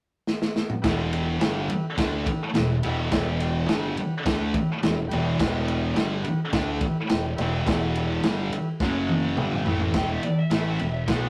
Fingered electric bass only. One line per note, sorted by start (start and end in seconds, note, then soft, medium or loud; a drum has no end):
0.84 1.37 E1 loud
1.42 1.68 G1 medium
1.71 muted fingered electric bass stroke soft
1.98 2.25 D2 loud
2.57 2.82 E1 medium
2.85 3.10 E1 loud
3.12 3.65 E1 loud
3.70 3.95 G1 medium
3.99 muted fingered electric bass stroke soft
4.26 4.52 D2 loud
4.84 5.10 E1 medium
5.13 5.38 E1 loud
5.40 5.92 E1 loud
5.98 6.23 G1 medium
6.26 muted fingered electric bass stroke soft
6.53 6.79 D2 medium
7.12 7.37 E1 medium
7.38 7.64 E1 loud
7.67 8.19 E1 loud
8.24 8.50 G1 medium
8.53 muted fingered electric bass stroke soft
8.80 9.33 F#1 loud
9.37 9.64 G1 loud
9.65 9.92 A1 loud
9.94 10.21 E1 loud
10.23 muted fingered electric bass stroke soft
10.51 10.78 A1 medium
10.80 11.06 E1 medium
11.08 11.29 B1 medium